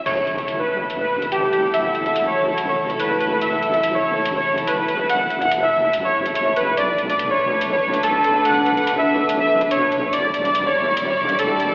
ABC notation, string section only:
X:1
M:4/4
L:1/8
Q:"Swing 16ths" 1/4=143
K:F#phr
V:1 name="String section"
[F,EA]8- | [F,EA]8- | [F,EA]8- | [F,EA]8 |
[A,DB]8- | [A,DB]8 | [G,Ed]8 |]